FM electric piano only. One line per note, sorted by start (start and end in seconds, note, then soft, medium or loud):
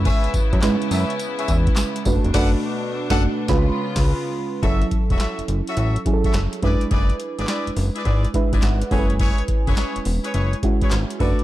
0.00 0.57 G#3 medium
0.00 0.57 C#4 medium
0.00 0.57 E4 medium
0.00 0.57 B4 loud
0.63 1.69 G#3 loud
0.63 1.69 C#4 medium
0.63 1.69 E4 medium
0.63 1.69 B4 loud
2.06 2.33 A3 medium
2.06 2.33 D4 medium
2.06 2.34 F#4 medium
2.06 2.34 B4 medium
2.34 2.55 A3 loud
2.34 2.55 D4 loud
2.34 2.56 F#4 loud
2.34 2.56 B4 loud
3.10 3.28 A3 loud
3.10 3.28 D4 medium
3.10 3.29 F#4 loud
3.49 3.70 G#3 loud
3.49 3.70 C#4 loud
3.49 3.70 F4 loud
3.49 3.70 B4 loud
3.49 3.70 B5 medium
4.63 5.69 F#3 medium
4.63 5.69 C#4 medium
4.63 5.69 E4 medium
4.63 5.69 A4 medium
6.06 6.63 F#3 medium
6.06 6.63 C#4 medium
6.06 6.62 E4 medium
6.06 6.15 G#4 medium
6.13 6.67 A4 loud
6.62 7.68 G#3 medium
6.62 7.69 D4 medium
6.62 7.69 E4 medium
6.62 7.69 B4 medium
8.34 8.90 G#3 medium
8.34 8.92 D4 medium
8.34 8.91 E4 medium
8.34 8.92 B4 medium
8.34 8.61 E5 medium
8.63 8.90 F#5 medium
8.91 9.97 G#3 medium
8.91 9.97 C#4 medium
8.91 9.98 E4 medium
8.91 9.01 A4 medium
8.91 9.18 G#5 medium
8.99 10.01 B4 medium
10.63 11.20 G#3 medium
10.63 11.20 C#4 medium
10.63 11.21 E4 medium
10.63 11.19 F#4 medium
11.19 11.44 A3 medium
11.19 11.44 D4 medium
11.19 11.44 F#4 medium
11.19 11.44 B4 medium